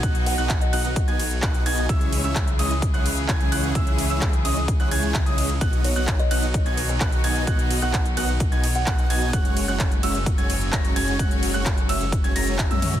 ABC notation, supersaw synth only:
X:1
M:4/4
L:1/16
Q:1/4=129
K:B
V:1 name="Supersaw synth"
[B,DFdf]3 [B,DFdf]2 z [B,DFdf] z2 [B,DFdg] z2 [B,DFdf]2 [B,DFdg]2 | [G,CEce]3 [G,CEce]2 z [G,CEcd] z2 [G,CEcf] z2 [G,CEcg]2 [G,CEcf]2 | [G,CEce]3 [G,CEce]2 z [G,CEcd] z2 [G,CEcf] [G,CEcg]3 [G,CEcd]2 z | [B,DFdf]3 [B,DFdf]2 z [B,DFdf] z2 [B,DFdg] z2 [B,DFdf]2 [B,DFdg]2 |
[B,DFdf]3 [B,DFdf]2 z [B,DFdf] z2 [B,DFdg] z2 [B,DFdf]2 [B,DFdg]2 | [G,CFcf]3 [G,CFcf]2 z [G,CFce] z2 [G,CFcg] z2 [G,CFca]2 [G,CFcg]2 | [G,CFcf]3 [G,CFcf]2 z [G,CFce] z2 [G,CFcg] [G,CFca]3 [G,CFce]2 z |]